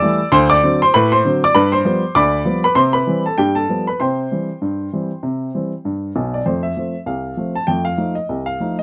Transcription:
0.00 0.19 E3 medium
0.00 0.19 G3 medium
0.00 0.19 A3 medium
0.00 0.30 D5 loud
0.00 0.30 D6 loud
0.32 0.58 D2 loud
0.32 0.49 C5 loud
0.32 0.50 C6 loud
0.50 0.79 D5 medium
0.50 0.74 D6 loud
0.63 0.80 D3 medium
0.63 0.80 F#3 medium
0.63 0.80 C4 medium
0.82 0.94 C5 medium
0.82 0.94 C6 loud
0.94 1.20 A2 medium
0.94 1.11 B4 medium
0.94 1.11 B5 loud
1.12 1.40 C5 medium
1.12 1.36 C6 loud
1.25 1.41 D3 medium
1.25 1.42 F#3 medium
1.25 1.42 C4 medium
1.44 1.55 D5 loud
1.44 1.56 D6 loud
1.55 1.81 G2 loud
1.55 1.71 B4 medium
1.55 1.72 B5 loud
1.72 2.13 C5 medium
1.72 2.13 C6 loud
1.85 2.02 F3 medium
1.85 2.02 G3 medium
1.85 2.02 B3 medium
2.15 2.42 D2 medium
2.15 2.61 D5 medium
2.15 2.61 B5 medium
2.15 2.54 D6 loud
2.45 2.62 F3 medium
2.45 2.63 G3 soft
2.45 2.63 B3 medium
2.64 2.77 B4 medium
2.64 2.77 B5 loud
2.75 3.02 C3 medium
2.75 2.93 C5 medium
2.75 2.94 C6 loud
2.93 3.23 B4 medium
2.93 3.23 B5 loud
3.07 3.24 E3 medium
3.07 3.24 G3 medium
3.07 3.25 C4 medium
3.26 3.38 A4 medium
3.26 3.38 A5 medium
3.38 3.64 G2 medium
3.38 3.55 G4 medium
3.38 3.55 G5 medium
3.55 3.84 A4 medium
3.55 3.85 A5 medium
3.69 3.86 F3 soft
3.69 3.86 G3 soft
3.69 3.87 B3 soft
3.87 4.00 B4 medium
3.87 4.00 B5 medium
4.00 4.26 C3 medium
4.00 6.11 C5 medium
4.00 6.12 G5 medium
4.00 5.72 C6 medium
4.31 4.48 E3 soft
4.31 4.48 G3 soft
4.31 4.48 C4 soft
4.62 4.87 G2 medium
4.93 5.09 E3 soft
4.93 5.10 G3 soft
4.93 5.10 C4 soft
5.23 5.49 C3 medium
5.54 5.71 E3 soft
5.54 5.71 G3 soft
5.54 5.71 C4 soft
5.85 6.11 G2 medium
6.16 6.40 B1 medium
6.16 6.40 B2 medium
6.34 6.46 D5 medium
6.46 6.72 F2 medium
6.46 6.64 A3 soft
6.46 6.63 C5 medium
6.63 6.98 E5 medium
6.77 6.93 F3 soft
6.77 6.94 A3 soft
6.77 6.94 C4 soft
7.06 7.33 C2 medium
7.06 7.53 F5 medium
7.37 7.54 F3 soft
7.37 7.55 A3 soft
7.37 7.55 C4 soft
7.56 7.68 A5 medium
7.67 7.94 F2 medium
7.67 7.86 A3 soft
7.67 7.85 G5 medium
7.85 8.14 F5 medium
7.98 8.15 F3 soft
7.98 8.15 A3 soft
7.98 8.15 D#4 soft
8.15 8.40 D#5 medium
8.29 8.55 C2 medium
8.46 8.75 F5 medium
8.60 8.77 F3 soft
8.60 8.78 A3 soft
8.60 8.78 D#4 soft
8.79 8.83 D#5 medium

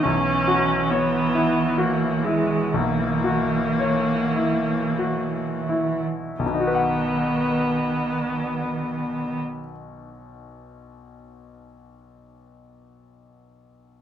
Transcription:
0.03 2.70 B1 soft
0.03 6.03 E3 soft
0.03 0.92 C#4 soft
0.47 1.17 F#4 soft
0.90 1.79 B3 medium
0.90 1.61 C#5 soft
1.35 2.07 E4 soft
1.78 2.26 A#3 soft
1.78 2.25 F#4 soft
2.24 2.76 G#3 soft
2.24 3.04 E4 soft
2.74 6.37 B1 soft
2.74 5.71 A#3 soft
3.24 4.13 F#4 soft
3.79 4.74 C#5 soft
4.36 5.41 E4 soft
4.99 5.71 F#4 soft
5.69 6.40 E4 soft
6.39 9.37 B1 soft
6.39 9.37 D#3 soft
6.39 9.39 B3 soft
6.46 9.44 B2 soft
6.54 9.51 D#4 soft
6.60 9.58 F#4 soft
6.67 9.64 B4 soft
6.75 9.72 F#5 soft

